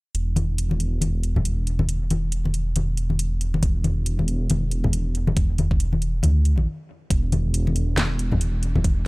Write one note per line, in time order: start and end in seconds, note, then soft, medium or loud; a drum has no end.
0.15 1.00 E1 medium
0.15 closed hi-hat medium
0.36 closed hi-hat medium
0.36 high conga medium
0.58 closed hi-hat medium
0.71 high conga medium
0.80 closed hi-hat soft
1.01 1.87 E1 medium
1.01 closed hi-hat medium
1.01 high conga medium
1.23 closed hi-hat soft
1.36 high conga medium
1.36 low conga medium
1.45 closed hi-hat medium
1.67 closed hi-hat soft
1.79 high conga medium
1.79 low conga medium
1.88 2.74 E1 medium
1.88 closed hi-hat medium
2.10 closed hi-hat medium
2.10 high conga medium
2.32 closed hi-hat medium
2.45 high conga medium
2.54 closed hi-hat medium
2.76 3.61 E1 medium
2.76 closed hi-hat medium
2.76 high conga medium
2.97 closed hi-hat soft
3.10 high conga medium
3.19 closed hi-hat medium
3.41 closed hi-hat medium
3.54 high conga medium
3.63 4.48 E1 medium
3.63 kick loud
3.63 closed hi-hat medium
3.84 closed hi-hat medium
3.84 high conga medium
4.06 closed hi-hat medium
4.19 high conga medium
4.28 closed hi-hat medium
4.50 5.35 E1 medium
4.50 closed hi-hat medium
4.50 high conga medium
4.71 closed hi-hat medium
4.84 high conga medium
4.84 low conga medium
4.93 closed hi-hat medium
5.15 closed hi-hat medium
5.27 high conga medium
5.27 low conga medium
5.37 6.22 E1 medium
5.37 kick loud
5.37 closed hi-hat medium
5.58 closed hi-hat soft
5.58 high conga medium
5.71 kick loud
5.80 closed hi-hat medium
5.93 high conga medium
6.02 closed hi-hat soft
6.23 6.67 D2 medium
6.23 closed hi-hat medium
6.23 high conga medium
6.45 closed hi-hat soft
6.58 high conga medium
7.10 7.96 E1 medium
7.10 kick loud
7.10 closed hi-hat medium
7.32 closed hi-hat medium
7.32 high conga medium
7.54 closed hi-hat medium
7.67 high conga medium
7.76 closed hi-hat medium
7.97 8.83 E1 medium
7.97 snare loud
7.97 closed hi-hat medium
7.97 high conga medium
8.19 closed hi-hat medium
8.31 high conga medium
8.31 low conga medium
8.41 closed hi-hat medium
8.63 closed hi-hat medium
8.76 high conga medium
8.76 low conga medium
8.84 9.07 E1 medium
8.84 kick loud
8.84 closed hi-hat medium